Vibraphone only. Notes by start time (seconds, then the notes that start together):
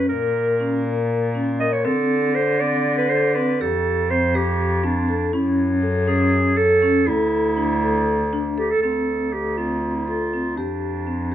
0.10 A#4
0.60 C#4
0.84 A#4
1.34 C#4
1.60 A#4
1.85 C4
2.35 A4
2.61 C4
3.10 A4
3.35 C4
3.61 G4
4.11 C4
4.35 G4
4.84 C4
5.09 A4
5.33 C#4
5.82 A4
6.07 C#4
6.57 A4
6.82 C#4
7.07 A4
7.57 D4
7.82 A4
8.33 D4
8.58 A4
8.83 C4
9.33 A4
9.58 C4
10.08 A4
10.33 C4
10.57 G4
11.07 C4
11.32 G4